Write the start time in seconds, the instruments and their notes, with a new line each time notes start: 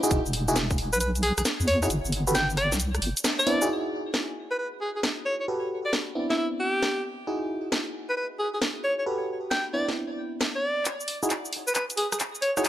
0.03 fm electric piano D#4 E4 F#4 G#4, cabasa
0.11 wobble bass E1, kick, closed hi-hat, cabasa
0.26 wobble bass E1, cabasa
0.33 open hi-hat
0.48 fm electric piano D#4 E4 F#4 G#4, cabasa
0.56 snare, closed hi-hat, cabasa
0.71 kick, cabasa
0.78 open hi-hat
0.93 wobble bass B1, alto saxophone B4, cabasa
1.00 alto saxophone B4, closed hi-hat, cabasa
1.15 closed hi-hat, cabasa
1.23 alto saxophone G#4, open hi-hat
1.38 wobble bass B1, alto saxophone G#4, cross-stick, closed hi-hat, cabasa
1.45 snare, closed hi-hat, cabasa
1.60 wobble bass E2, cabasa
1.68 alto saxophone C#5, open hi-hat
1.82 fm electric piano D#4 E4 F#4 G#4, alto saxophone C#5, cross-stick, cabasa
1.90 wobble bass G1, closed hi-hat, cabasa
2.05 wobble bass G1, cabasa
2.12 open hi-hat
2.27 fm electric piano F#4 G4 A4 B4, cabasa
2.35 alto saxophone G5, snare, closed hi-hat, cabasa
2.50 cabasa
2.57 alto saxophone D5, cross-stick, open hi-hat
2.72 wobble bass C2, snare, closed hi-hat, cabasa
2.80 closed hi-hat, cabasa
2.95 cross-stick, closed hi-hat, cabasa
3.02 wobble bass G1, open hi-hat
3.17 closed hi-hat, cabasa
3.24 snare, closed hi-hat, cabasa
3.39 alto saxophone D5, cross-stick, cabasa
3.47 fm electric piano B3 C4 D4 E4, open hi-hat
3.62 fm electric piano D#4 E4 F#4 G#4, cabasa
3.69 fm electric piano D#4 E4 G#4
4.14 snare
4.51 alto saxophone B4
4.59 alto saxophone B4
4.81 alto saxophone G#4
4.96 alto saxophone G#4
5.03 snare
5.26 alto saxophone C#5
5.41 alto saxophone C#5
5.48 fm electric piano F#4 G4 A4 B4
5.86 alto saxophone D5
5.93 snare
6.15 fm electric piano B3 C4 D4 E4
6.30 alto saxophone E4, snare
6.38 alto saxophone E4
6.60 alto saxophone G4
6.83 snare
7.27 fm electric piano D#4 E4 F#4 G#4
7.72 snare
8.09 alto saxophone B4
8.17 alto saxophone B4
8.39 alto saxophone G#4
8.54 alto saxophone G#4
8.62 snare
8.84 alto saxophone C#5
8.99 alto saxophone C#5
9.06 fm electric piano F#4 G4 A4 B4
9.51 alto saxophone G5, snare
9.73 fm electric piano B3 C4 D4 E4, alto saxophone D5
9.89 snare
10.41 snare
10.56 alto saxophone D5
10.85 clap, closed hi-hat, cabasa
11.00 cabasa
11.08 open hi-hat
11.23 fm electric piano D#4 E4 F#4 G#4, cabasa
11.30 clap, closed hi-hat, cabasa
11.45 cabasa
11.53 open hi-hat
11.68 alto saxophone B4, cabasa
11.75 alto saxophone B4, clap, closed hi-hat, cabasa
11.90 closed hi-hat, cabasa
11.97 alto saxophone G#4, open hi-hat
12.12 alto saxophone G#4, cross-stick, closed hi-hat, cabasa
12.20 clap, closed hi-hat, cabasa
12.35 cabasa
12.42 alto saxophone C#5, open hi-hat
12.57 fm electric piano D#4 E4 F#4 G#4, alto saxophone C#5, cross-stick, cabasa
12.65 clap, closed hi-hat, cabasa